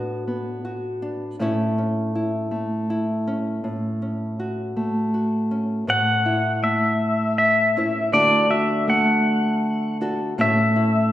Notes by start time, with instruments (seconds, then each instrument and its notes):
Already playing: nylon-string guitar A2 B3 D4 F#4 B4
0.28 nylon-string guitar B3
0.65 nylon-string guitar F#4
1.02 nylon-string guitar D4
1.39 nylon-string guitar A2 A3 C#4 E4 C#5
1.78 nylon-string guitar C#4
2.15 nylon-string guitar E4
2.51 nylon-string guitar A3
2.90 nylon-string guitar E4
3.27 nylon-string guitar C#4
3.64 nylon-string guitar A2
4.02 nylon-string guitar C#4
4.40 nylon-string guitar F#4
4.76 nylon-string guitar A3
5.14 nylon-string guitar F#4
5.51 nylon-string guitar C#4
5.87 nylon-string guitar A2 C#5, pedal steel guitar F#5
6.26 nylon-string guitar E4
6.63 nylon-string guitar A3, pedal steel guitar E5
7.38 pedal steel guitar E5
7.77 nylon-string guitar C#4 E4 C#5
8.13 nylon-string guitar D3 A3 D4 F#4 A4, pedal steel guitar D5
8.50 nylon-string guitar F#4, pedal steel guitar E5
8.88 nylon-string guitar A3, pedal steel guitar F#5
10.01 nylon-string guitar D4 F#4 A4
10.38 nylon-string guitar A2 A3 C#4 E4 C#5, pedal steel guitar E5
10.76 nylon-string guitar E4